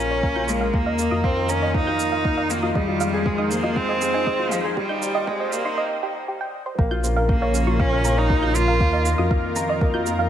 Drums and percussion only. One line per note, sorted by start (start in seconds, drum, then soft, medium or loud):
0.23 kick loud
0.49 shaker medium
0.74 kick medium
0.99 shaker medium
1.24 kick loud
1.49 shaker medium
1.75 kick loud
2.00 shaker medium
2.25 kick loud
2.50 shaker medium
2.75 kick loud
3.00 shaker medium
3.26 kick loud
3.51 shaker medium
3.76 kick loud
4.02 shaker medium
4.27 kick loud
4.52 shaker medium
4.77 kick loud
5.02 shaker medium
5.27 kick loud
5.53 shaker medium
6.79 kick loud
7.04 shaker medium
7.29 kick loud
7.55 shaker medium
7.80 kick loud
8.05 shaker medium
8.30 kick loud
8.55 shaker medium
8.80 kick loud
9.06 shaker medium
9.31 kick loud
9.56 shaker medium
9.81 kick loud
10.06 shaker medium